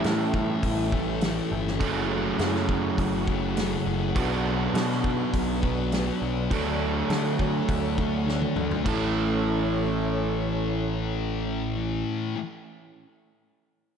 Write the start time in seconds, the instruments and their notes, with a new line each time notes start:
Already playing: distorted electric guitar A2 E3 A3, overdriven electric guitar G3 C#4 E4, string machine E4 A4 E5 G5
0.04 picked electric bass A2, snare, open hi-hat
0.34 kick
0.63 picked electric bass A1, kick, open hi-hat
0.92 distorted electric guitar A2 E3 A3, kick
1.21 distorted electric guitar A2 E3 A3, snare, open hi-hat
1.52 picked electric bass G1
1.67 snare
1.80 picked electric bass F#1, distorted electric guitar F#2 C#3 F#3, overdriven electric guitar A3 C#4, string machine E4 C#5 F#5, kick, open hi-hat
2.39 picked electric bass F#2, snare, open hi-hat
2.55 snare
2.69 kick
2.98 picked electric bass F#1, kick, open hi-hat
3.27 distorted electric guitar F#2 C#3 F#3, kick
3.57 distorted electric guitar F#2 C#3 F#3, snare, open hi-hat
3.86 picked electric bass F#1
4.16 picked electric bass B1, distorted electric guitar B2 F#3 B3, string machine D4 B4, overdriven electric guitar D4, kick, open hi-hat
4.74 picked electric bass B2, snare, open hi-hat
4.91 snare
5.04 kick
5.34 picked electric bass B1, kick, open hi-hat
5.62 distorted electric guitar B2 F#3 B3, kick
5.92 distorted electric guitar B2 F#3 B3, snare, open hi-hat
6.22 picked electric bass B1
6.49 picked electric bass D2, distorted electric guitar D3 A3 D4, overdriven electric guitar F#3, string machine A4 C#5 F#5, kick, open hi-hat
7.10 picked electric bass D3, snare, open hi-hat
7.39 kick
7.69 picked electric bass D2, kick, open hi-hat
7.98 distorted electric guitar D3 A3 D4, kick
8.27 distorted electric guitar D3 A3 D4, snare
8.42 high tom
8.56 picked electric bass D2, mid tom
8.71 floor tom
8.84 picked electric bass A1, distorted electric guitar A2 E3, string machine A3 C#4 E4 C#5 E5, overdriven electric guitar C#4 E4 A4, kick, crash
8.88 distorted electric guitar A3